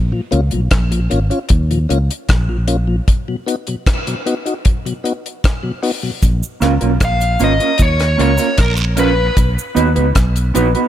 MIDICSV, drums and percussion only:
0, 0, Header, 1, 2, 480
1, 0, Start_track
1, 0, Tempo, 787402
1, 1873, Time_signature, 4, 2, 24, 8
1, 6632, End_track
2, 0, Start_track
2, 0, Title_t, "Drums"
2, 195, Note_on_c, 9, 42, 70
2, 256, Note_off_c, 9, 42, 0
2, 310, Note_on_c, 9, 42, 51
2, 371, Note_off_c, 9, 42, 0
2, 431, Note_on_c, 9, 42, 87
2, 434, Note_on_c, 9, 36, 107
2, 435, Note_on_c, 9, 37, 119
2, 492, Note_off_c, 9, 42, 0
2, 495, Note_off_c, 9, 36, 0
2, 496, Note_off_c, 9, 37, 0
2, 559, Note_on_c, 9, 42, 57
2, 620, Note_off_c, 9, 42, 0
2, 676, Note_on_c, 9, 42, 75
2, 737, Note_off_c, 9, 42, 0
2, 798, Note_on_c, 9, 42, 47
2, 859, Note_off_c, 9, 42, 0
2, 906, Note_on_c, 9, 42, 91
2, 916, Note_on_c, 9, 36, 107
2, 967, Note_off_c, 9, 42, 0
2, 977, Note_off_c, 9, 36, 0
2, 1041, Note_on_c, 9, 42, 53
2, 1102, Note_off_c, 9, 42, 0
2, 1160, Note_on_c, 9, 42, 76
2, 1221, Note_off_c, 9, 42, 0
2, 1284, Note_on_c, 9, 42, 58
2, 1345, Note_off_c, 9, 42, 0
2, 1394, Note_on_c, 9, 42, 92
2, 1397, Note_on_c, 9, 36, 114
2, 1402, Note_on_c, 9, 37, 114
2, 1455, Note_off_c, 9, 42, 0
2, 1458, Note_off_c, 9, 36, 0
2, 1462, Note_off_c, 9, 37, 0
2, 1631, Note_on_c, 9, 42, 86
2, 1692, Note_off_c, 9, 42, 0
2, 1876, Note_on_c, 9, 42, 93
2, 1877, Note_on_c, 9, 36, 111
2, 1937, Note_off_c, 9, 36, 0
2, 1937, Note_off_c, 9, 42, 0
2, 2121, Note_on_c, 9, 42, 70
2, 2182, Note_off_c, 9, 42, 0
2, 2236, Note_on_c, 9, 42, 49
2, 2297, Note_off_c, 9, 42, 0
2, 2356, Note_on_c, 9, 36, 109
2, 2356, Note_on_c, 9, 42, 90
2, 2360, Note_on_c, 9, 37, 112
2, 2417, Note_off_c, 9, 36, 0
2, 2417, Note_off_c, 9, 42, 0
2, 2421, Note_off_c, 9, 37, 0
2, 2481, Note_on_c, 9, 42, 58
2, 2542, Note_off_c, 9, 42, 0
2, 2600, Note_on_c, 9, 42, 72
2, 2661, Note_off_c, 9, 42, 0
2, 2720, Note_on_c, 9, 42, 47
2, 2781, Note_off_c, 9, 42, 0
2, 2834, Note_on_c, 9, 42, 92
2, 2839, Note_on_c, 9, 36, 114
2, 2895, Note_off_c, 9, 42, 0
2, 2900, Note_off_c, 9, 36, 0
2, 2965, Note_on_c, 9, 42, 50
2, 3026, Note_off_c, 9, 42, 0
2, 3081, Note_on_c, 9, 42, 74
2, 3142, Note_off_c, 9, 42, 0
2, 3206, Note_on_c, 9, 42, 55
2, 3267, Note_off_c, 9, 42, 0
2, 3317, Note_on_c, 9, 42, 92
2, 3318, Note_on_c, 9, 36, 106
2, 3325, Note_on_c, 9, 37, 112
2, 3378, Note_off_c, 9, 42, 0
2, 3379, Note_off_c, 9, 36, 0
2, 3385, Note_off_c, 9, 37, 0
2, 3555, Note_on_c, 9, 46, 86
2, 3616, Note_off_c, 9, 46, 0
2, 3794, Note_on_c, 9, 69, 78
2, 3796, Note_on_c, 9, 36, 115
2, 3796, Note_on_c, 9, 42, 85
2, 3855, Note_off_c, 9, 69, 0
2, 3857, Note_off_c, 9, 36, 0
2, 3857, Note_off_c, 9, 42, 0
2, 3919, Note_on_c, 9, 69, 78
2, 3980, Note_off_c, 9, 69, 0
2, 4033, Note_on_c, 9, 69, 56
2, 4035, Note_on_c, 9, 37, 65
2, 4036, Note_on_c, 9, 42, 71
2, 4094, Note_off_c, 9, 69, 0
2, 4096, Note_off_c, 9, 37, 0
2, 4097, Note_off_c, 9, 42, 0
2, 4151, Note_on_c, 9, 42, 47
2, 4212, Note_off_c, 9, 42, 0
2, 4270, Note_on_c, 9, 42, 86
2, 4272, Note_on_c, 9, 36, 108
2, 4274, Note_on_c, 9, 37, 113
2, 4276, Note_on_c, 9, 69, 52
2, 4331, Note_off_c, 9, 42, 0
2, 4333, Note_off_c, 9, 36, 0
2, 4335, Note_off_c, 9, 37, 0
2, 4337, Note_off_c, 9, 69, 0
2, 4395, Note_on_c, 9, 69, 51
2, 4397, Note_on_c, 9, 42, 56
2, 4456, Note_off_c, 9, 69, 0
2, 4458, Note_off_c, 9, 42, 0
2, 4508, Note_on_c, 9, 69, 66
2, 4513, Note_on_c, 9, 42, 67
2, 4569, Note_off_c, 9, 69, 0
2, 4574, Note_off_c, 9, 42, 0
2, 4634, Note_on_c, 9, 42, 49
2, 4695, Note_off_c, 9, 42, 0
2, 4742, Note_on_c, 9, 42, 90
2, 4750, Note_on_c, 9, 69, 61
2, 4752, Note_on_c, 9, 36, 107
2, 4803, Note_off_c, 9, 42, 0
2, 4811, Note_off_c, 9, 69, 0
2, 4813, Note_off_c, 9, 36, 0
2, 4874, Note_on_c, 9, 42, 51
2, 4880, Note_on_c, 9, 37, 63
2, 4935, Note_off_c, 9, 42, 0
2, 4941, Note_off_c, 9, 37, 0
2, 4995, Note_on_c, 9, 42, 74
2, 5056, Note_off_c, 9, 42, 0
2, 5107, Note_on_c, 9, 69, 72
2, 5117, Note_on_c, 9, 42, 56
2, 5168, Note_off_c, 9, 69, 0
2, 5178, Note_off_c, 9, 42, 0
2, 5228, Note_on_c, 9, 42, 100
2, 5229, Note_on_c, 9, 74, 67
2, 5232, Note_on_c, 9, 36, 107
2, 5236, Note_on_c, 9, 37, 106
2, 5289, Note_off_c, 9, 42, 0
2, 5290, Note_off_c, 9, 74, 0
2, 5293, Note_off_c, 9, 36, 0
2, 5297, Note_off_c, 9, 37, 0
2, 5345, Note_on_c, 9, 69, 55
2, 5406, Note_off_c, 9, 69, 0
2, 5467, Note_on_c, 9, 42, 82
2, 5470, Note_on_c, 9, 69, 75
2, 5528, Note_off_c, 9, 42, 0
2, 5531, Note_off_c, 9, 69, 0
2, 5710, Note_on_c, 9, 42, 89
2, 5711, Note_on_c, 9, 36, 109
2, 5714, Note_on_c, 9, 69, 73
2, 5771, Note_off_c, 9, 42, 0
2, 5772, Note_off_c, 9, 36, 0
2, 5775, Note_off_c, 9, 69, 0
2, 5843, Note_on_c, 9, 69, 77
2, 5904, Note_off_c, 9, 69, 0
2, 5952, Note_on_c, 9, 69, 55
2, 5953, Note_on_c, 9, 42, 70
2, 6013, Note_off_c, 9, 69, 0
2, 6014, Note_off_c, 9, 42, 0
2, 6071, Note_on_c, 9, 42, 48
2, 6132, Note_off_c, 9, 42, 0
2, 6188, Note_on_c, 9, 42, 92
2, 6191, Note_on_c, 9, 36, 101
2, 6193, Note_on_c, 9, 37, 116
2, 6197, Note_on_c, 9, 69, 49
2, 6249, Note_off_c, 9, 42, 0
2, 6252, Note_off_c, 9, 36, 0
2, 6254, Note_off_c, 9, 37, 0
2, 6258, Note_off_c, 9, 69, 0
2, 6314, Note_on_c, 9, 42, 57
2, 6320, Note_on_c, 9, 69, 52
2, 6375, Note_off_c, 9, 42, 0
2, 6381, Note_off_c, 9, 69, 0
2, 6430, Note_on_c, 9, 42, 72
2, 6435, Note_on_c, 9, 69, 71
2, 6491, Note_off_c, 9, 42, 0
2, 6496, Note_off_c, 9, 69, 0
2, 6552, Note_on_c, 9, 42, 46
2, 6613, Note_off_c, 9, 42, 0
2, 6632, End_track
0, 0, End_of_file